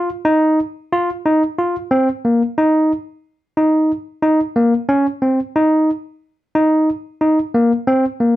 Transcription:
0.25 0.59 D#4 medium
0.92 1.09 F4 medium
1.26 1.42 D#4 medium
1.59 1.75 F4 medium
1.91 2.08 C4 medium
2.25 2.42 A#3 medium
2.58 2.91 D#4 medium
3.57 3.91 D#4 medium
4.22 4.39 D#4 medium
4.56 4.73 A#3 medium
4.89 5.06 C#4 medium
5.22 5.39 C4 medium
5.56 5.90 D#4 medium
6.55 6.89 D#4 medium
7.21 7.38 D#4 medium
7.54 7.71 A#3 medium
7.87 8.04 C4 medium
8.20 8.36 A#3 medium

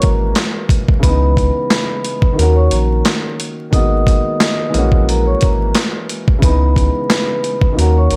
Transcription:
0.00 0.33 G#1 loud
0.00 0.98 E3 medium
0.00 0.99 G#3 medium
0.00 1.00 A#3 medium
0.00 1.01 C#4 medium
0.00 1.02 F#4 medium
0.00 0.32 A#4 medium
0.00 0.33 A#5 medium
0.00 kick loud
0.00 closed hi-hat medium
0.35 snare loud
0.35 clap medium
0.35 closed hi-hat medium
0.69 kick medium
0.69 closed hi-hat medium
0.88 kick loud
1.00 1.50 C#2 loud
1.00 2.34 C#3 medium
1.00 2.35 E3 medium
1.00 2.33 B4 loud
1.00 2.34 B5 medium
1.00 kick loud
1.00 closed hi-hat loud
1.04 2.36 G#3 medium
1.04 2.37 B3 medium
1.08 2.38 D#4 medium
1.37 kick medium
1.37 closed hi-hat medium
1.71 snare loud
1.71 clap loud
1.71 closed hi-hat medium
2.04 closed hi-hat medium
2.22 kick medium
2.33 3.68 D#3 medium
2.33 3.69 F#3 medium
2.37 2.69 D#2 loud
2.37 3.70 A#3 medium
2.37 3.71 C#4 medium
2.37 2.55 A#4 medium
2.37 2.55 A#5 medium
2.37 closed hi-hat medium
2.42 3.72 F#4 medium
2.55 2.69 C#5 medium
2.55 2.70 C#6 medium
2.70 3.02 A#1 loud
2.70 3.01 A#4 medium
2.70 3.02 A#5 medium
2.70 closed hi-hat medium
3.05 snare loud
3.05 clap medium
3.05 closed hi-hat medium
3.40 closed hi-hat medium
3.71 4.20 G#1 loud
3.71 4.73 D#3 medium
3.71 4.70 G#3 medium
3.71 4.72 A#3 medium
3.71 4.75 B3 medium
3.71 5.03 D#5 loud
3.71 5.04 D#6 medium
3.71 kick loud
3.71 closed hi-hat loud
3.75 4.75 F#4 medium
4.07 kick medium
4.07 closed hi-hat medium
4.40 snare loud
4.40 clap loud
4.40 closed hi-hat medium
4.70 6.37 E3 medium
4.70 6.38 G#3 medium
4.74 5.35 A#1 loud
4.74 6.39 A#3 medium
4.74 6.40 C#4 medium
4.74 closed hi-hat medium
4.78 6.41 F#4 medium
4.92 kick medium
5.08 5.25 A#4 medium
5.08 5.25 A#5 medium
5.08 closed hi-hat medium
5.26 5.40 C#5 medium
5.26 5.40 C#6 medium
5.41 5.72 G#1 medium
5.41 5.72 A#4 medium
5.41 5.73 A#5 medium
5.41 kick medium
5.41 closed hi-hat medium
5.75 snare loud
5.75 clap medium
5.75 closed hi-hat loud
6.09 closed hi-hat medium
6.28 kick loud
6.39 6.90 C#2 loud
6.39 7.73 C#3 medium
6.39 7.74 E3 medium
6.39 7.73 B4 loud
6.39 kick loud
6.43 7.75 G#3 medium
6.43 7.76 B3 medium
6.43 7.74 B5 medium
6.43 closed hi-hat loud
6.47 7.77 D#4 medium
6.76 kick medium
6.76 closed hi-hat medium
7.10 snare loud
7.10 clap loud
7.10 closed hi-hat medium
7.44 closed hi-hat medium
7.61 kick medium
7.72 8.16 D#3 medium
7.72 8.16 F#3 medium
7.77 8.08 D#2 loud
7.77 8.16 A#3 medium
7.77 8.16 C#4 medium
7.77 7.95 A#4 medium
7.77 7.95 A#5 medium
7.77 closed hi-hat loud
7.81 8.16 F#4 medium
7.97 8.10 C#5 medium
7.97 8.10 C#6 medium
8.11 8.16 A#1 loud
8.11 8.16 A#4 medium
8.11 8.16 A#5 medium
8.11 closed hi-hat medium

